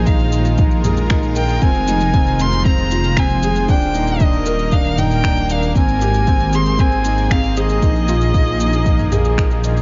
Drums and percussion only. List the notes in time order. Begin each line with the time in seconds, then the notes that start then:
0.07 kick, shaker
0.19 shaker
0.32 shaker
0.45 shaker
0.58 kick, shaker
0.71 shaker
0.84 mid tom, shaker
0.97 shaker
1.10 finger snap, kick, shaker
1.23 shaker
1.36 shaker
1.49 shaker
1.61 kick, shaker
1.74 shaker
1.87 shaker
2.00 shaker
2.14 kick, shaker
2.27 shaker
2.39 shaker
2.52 shaker
2.65 kick, shaker
2.78 shaker
2.91 shaker
3.04 shaker
3.17 finger snap, kick, shaker
3.30 shaker
3.43 shaker
3.56 shaker
3.69 kick, shaker
3.82 shaker
3.94 shaker
4.07 shaker
4.20 kick, shaker
4.33 shaker
4.46 shaker
4.59 shaker
4.72 kick, shaker
4.85 shaker
4.98 mid tom, shaker
5.11 shaker
5.24 finger snap, kick, shaker
5.37 shaker
5.50 shaker
5.63 shaker
5.76 kick, shaker
5.89 shaker
6.01 shaker
6.14 shaker
6.27 kick, shaker
6.40 shaker
6.53 shaker
6.66 shaker
6.79 kick, shaker
6.92 shaker
7.05 shaker
7.18 shaker
7.31 finger snap, kick, shaker
7.44 shaker
7.57 shaker
7.69 shaker
7.82 kick, shaker
7.96 shaker
8.08 shaker
8.21 shaker
8.34 kick, shaker
8.47 shaker
8.60 shaker
8.73 shaker
8.86 kick, shaker
8.99 mid tom, shaker
9.12 mid tom, shaker
9.25 shaker
9.38 finger snap, kick, shaker
9.51 shaker
9.64 shaker
9.77 shaker